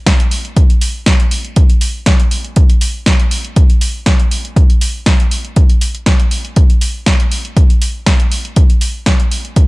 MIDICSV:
0, 0, Header, 1, 2, 480
1, 0, Start_track
1, 0, Tempo, 500000
1, 541, Time_signature, 4, 2, 24, 8
1, 9287, End_track
2, 0, Start_track
2, 0, Title_t, "Drums"
2, 62, Note_on_c, 9, 36, 110
2, 62, Note_on_c, 9, 38, 125
2, 63, Note_on_c, 9, 42, 81
2, 158, Note_off_c, 9, 36, 0
2, 158, Note_off_c, 9, 38, 0
2, 159, Note_off_c, 9, 42, 0
2, 191, Note_on_c, 9, 42, 55
2, 287, Note_off_c, 9, 42, 0
2, 301, Note_on_c, 9, 46, 94
2, 397, Note_off_c, 9, 46, 0
2, 431, Note_on_c, 9, 42, 38
2, 527, Note_off_c, 9, 42, 0
2, 542, Note_on_c, 9, 42, 81
2, 543, Note_on_c, 9, 36, 124
2, 638, Note_off_c, 9, 42, 0
2, 639, Note_off_c, 9, 36, 0
2, 671, Note_on_c, 9, 42, 53
2, 767, Note_off_c, 9, 42, 0
2, 782, Note_on_c, 9, 46, 113
2, 878, Note_off_c, 9, 46, 0
2, 1021, Note_on_c, 9, 38, 125
2, 1021, Note_on_c, 9, 42, 81
2, 1023, Note_on_c, 9, 36, 110
2, 1117, Note_off_c, 9, 38, 0
2, 1117, Note_off_c, 9, 42, 0
2, 1119, Note_off_c, 9, 36, 0
2, 1150, Note_on_c, 9, 42, 54
2, 1246, Note_off_c, 9, 42, 0
2, 1260, Note_on_c, 9, 46, 101
2, 1356, Note_off_c, 9, 46, 0
2, 1388, Note_on_c, 9, 42, 38
2, 1484, Note_off_c, 9, 42, 0
2, 1500, Note_on_c, 9, 42, 81
2, 1503, Note_on_c, 9, 36, 123
2, 1596, Note_off_c, 9, 42, 0
2, 1599, Note_off_c, 9, 36, 0
2, 1628, Note_on_c, 9, 42, 54
2, 1724, Note_off_c, 9, 42, 0
2, 1739, Note_on_c, 9, 46, 113
2, 1835, Note_off_c, 9, 46, 0
2, 1980, Note_on_c, 9, 38, 124
2, 1980, Note_on_c, 9, 42, 80
2, 1983, Note_on_c, 9, 36, 113
2, 2076, Note_off_c, 9, 38, 0
2, 2076, Note_off_c, 9, 42, 0
2, 2079, Note_off_c, 9, 36, 0
2, 2108, Note_on_c, 9, 42, 53
2, 2204, Note_off_c, 9, 42, 0
2, 2220, Note_on_c, 9, 46, 94
2, 2316, Note_off_c, 9, 46, 0
2, 2347, Note_on_c, 9, 42, 37
2, 2443, Note_off_c, 9, 42, 0
2, 2459, Note_on_c, 9, 42, 80
2, 2463, Note_on_c, 9, 36, 127
2, 2555, Note_off_c, 9, 42, 0
2, 2559, Note_off_c, 9, 36, 0
2, 2588, Note_on_c, 9, 42, 52
2, 2684, Note_off_c, 9, 42, 0
2, 2699, Note_on_c, 9, 46, 116
2, 2795, Note_off_c, 9, 46, 0
2, 2940, Note_on_c, 9, 38, 123
2, 2940, Note_on_c, 9, 42, 77
2, 2942, Note_on_c, 9, 36, 112
2, 3036, Note_off_c, 9, 38, 0
2, 3036, Note_off_c, 9, 42, 0
2, 3038, Note_off_c, 9, 36, 0
2, 3068, Note_on_c, 9, 42, 50
2, 3164, Note_off_c, 9, 42, 0
2, 3180, Note_on_c, 9, 46, 99
2, 3276, Note_off_c, 9, 46, 0
2, 3308, Note_on_c, 9, 42, 36
2, 3404, Note_off_c, 9, 42, 0
2, 3421, Note_on_c, 9, 42, 78
2, 3422, Note_on_c, 9, 36, 127
2, 3517, Note_off_c, 9, 42, 0
2, 3518, Note_off_c, 9, 36, 0
2, 3549, Note_on_c, 9, 42, 52
2, 3645, Note_off_c, 9, 42, 0
2, 3660, Note_on_c, 9, 46, 111
2, 3756, Note_off_c, 9, 46, 0
2, 3899, Note_on_c, 9, 38, 124
2, 3900, Note_on_c, 9, 42, 78
2, 3902, Note_on_c, 9, 36, 114
2, 3995, Note_off_c, 9, 38, 0
2, 3996, Note_off_c, 9, 42, 0
2, 3998, Note_off_c, 9, 36, 0
2, 4028, Note_on_c, 9, 42, 51
2, 4124, Note_off_c, 9, 42, 0
2, 4141, Note_on_c, 9, 46, 98
2, 4237, Note_off_c, 9, 46, 0
2, 4271, Note_on_c, 9, 42, 35
2, 4367, Note_off_c, 9, 42, 0
2, 4382, Note_on_c, 9, 36, 127
2, 4382, Note_on_c, 9, 42, 76
2, 4478, Note_off_c, 9, 36, 0
2, 4478, Note_off_c, 9, 42, 0
2, 4510, Note_on_c, 9, 42, 50
2, 4606, Note_off_c, 9, 42, 0
2, 4621, Note_on_c, 9, 46, 114
2, 4717, Note_off_c, 9, 46, 0
2, 4860, Note_on_c, 9, 38, 117
2, 4860, Note_on_c, 9, 42, 75
2, 4862, Note_on_c, 9, 36, 109
2, 4956, Note_off_c, 9, 38, 0
2, 4956, Note_off_c, 9, 42, 0
2, 4958, Note_off_c, 9, 36, 0
2, 4990, Note_on_c, 9, 42, 49
2, 5086, Note_off_c, 9, 42, 0
2, 5101, Note_on_c, 9, 46, 99
2, 5197, Note_off_c, 9, 46, 0
2, 5228, Note_on_c, 9, 42, 36
2, 5324, Note_off_c, 9, 42, 0
2, 5340, Note_on_c, 9, 42, 75
2, 5343, Note_on_c, 9, 36, 120
2, 5436, Note_off_c, 9, 42, 0
2, 5439, Note_off_c, 9, 36, 0
2, 5468, Note_on_c, 9, 42, 50
2, 5564, Note_off_c, 9, 42, 0
2, 5581, Note_on_c, 9, 46, 111
2, 5677, Note_off_c, 9, 46, 0
2, 5708, Note_on_c, 9, 42, 36
2, 5804, Note_off_c, 9, 42, 0
2, 5820, Note_on_c, 9, 38, 119
2, 5821, Note_on_c, 9, 42, 79
2, 5823, Note_on_c, 9, 36, 114
2, 5916, Note_off_c, 9, 38, 0
2, 5917, Note_off_c, 9, 42, 0
2, 5919, Note_off_c, 9, 36, 0
2, 5948, Note_on_c, 9, 42, 50
2, 6044, Note_off_c, 9, 42, 0
2, 6060, Note_on_c, 9, 46, 96
2, 6156, Note_off_c, 9, 46, 0
2, 6189, Note_on_c, 9, 42, 36
2, 6285, Note_off_c, 9, 42, 0
2, 6301, Note_on_c, 9, 42, 77
2, 6303, Note_on_c, 9, 36, 119
2, 6397, Note_off_c, 9, 42, 0
2, 6399, Note_off_c, 9, 36, 0
2, 6430, Note_on_c, 9, 42, 50
2, 6526, Note_off_c, 9, 42, 0
2, 6541, Note_on_c, 9, 46, 107
2, 6637, Note_off_c, 9, 46, 0
2, 6781, Note_on_c, 9, 38, 112
2, 6782, Note_on_c, 9, 42, 76
2, 6783, Note_on_c, 9, 36, 105
2, 6877, Note_off_c, 9, 38, 0
2, 6878, Note_off_c, 9, 42, 0
2, 6879, Note_off_c, 9, 36, 0
2, 6911, Note_on_c, 9, 42, 51
2, 7007, Note_off_c, 9, 42, 0
2, 7022, Note_on_c, 9, 46, 93
2, 7118, Note_off_c, 9, 46, 0
2, 7151, Note_on_c, 9, 42, 37
2, 7247, Note_off_c, 9, 42, 0
2, 7263, Note_on_c, 9, 36, 119
2, 7263, Note_on_c, 9, 42, 74
2, 7359, Note_off_c, 9, 36, 0
2, 7359, Note_off_c, 9, 42, 0
2, 7392, Note_on_c, 9, 42, 50
2, 7488, Note_off_c, 9, 42, 0
2, 7503, Note_on_c, 9, 46, 108
2, 7599, Note_off_c, 9, 46, 0
2, 7742, Note_on_c, 9, 38, 116
2, 7742, Note_on_c, 9, 42, 76
2, 7743, Note_on_c, 9, 36, 108
2, 7838, Note_off_c, 9, 38, 0
2, 7838, Note_off_c, 9, 42, 0
2, 7839, Note_off_c, 9, 36, 0
2, 7869, Note_on_c, 9, 42, 50
2, 7965, Note_off_c, 9, 42, 0
2, 7983, Note_on_c, 9, 46, 95
2, 8079, Note_off_c, 9, 46, 0
2, 8112, Note_on_c, 9, 42, 35
2, 8208, Note_off_c, 9, 42, 0
2, 8221, Note_on_c, 9, 42, 80
2, 8223, Note_on_c, 9, 36, 113
2, 8317, Note_off_c, 9, 42, 0
2, 8319, Note_off_c, 9, 36, 0
2, 8349, Note_on_c, 9, 42, 51
2, 8445, Note_off_c, 9, 42, 0
2, 8459, Note_on_c, 9, 46, 107
2, 8555, Note_off_c, 9, 46, 0
2, 8700, Note_on_c, 9, 38, 115
2, 8700, Note_on_c, 9, 42, 80
2, 8702, Note_on_c, 9, 36, 99
2, 8796, Note_off_c, 9, 38, 0
2, 8796, Note_off_c, 9, 42, 0
2, 8798, Note_off_c, 9, 36, 0
2, 8829, Note_on_c, 9, 42, 52
2, 8925, Note_off_c, 9, 42, 0
2, 8942, Note_on_c, 9, 46, 92
2, 9038, Note_off_c, 9, 46, 0
2, 9070, Note_on_c, 9, 42, 37
2, 9166, Note_off_c, 9, 42, 0
2, 9180, Note_on_c, 9, 42, 82
2, 9182, Note_on_c, 9, 36, 114
2, 9276, Note_off_c, 9, 42, 0
2, 9278, Note_off_c, 9, 36, 0
2, 9287, End_track
0, 0, End_of_file